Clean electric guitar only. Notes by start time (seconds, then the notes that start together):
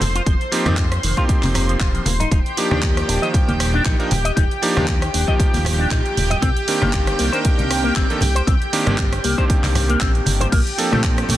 0.15 F4
0.27 F3
0.67 D#3
1.03 D#3
1.18 F4
1.43 C3
1.55 C3
1.69 F3
1.81 F4
1.95 F3
2.06 A#3
2.20 D#4
2.32 D#4
2.71 D4
3.08 D4
3.22 D#5
3.48 A#3
3.74 D4
3.85 D#4
4.25 D#5
4.36 D#4
4.76 D4
5.14 D4
5.28 D#5
5.53 A#3
5.79 D4
5.91 D#4
6.30 D#5
6.42 C4
6.82 A#3
7.19 A#3
7.32 C5
7.58 G3
7.84 A#3
7.96 C4
8.35 C5
8.47 C4
8.87 A#3
9.24 A#3
9.38 C5
9.64 G3
9.89 A#3
10.01 C4
10.40 C5
10.52 A#3
10.92 A3
11.30 A3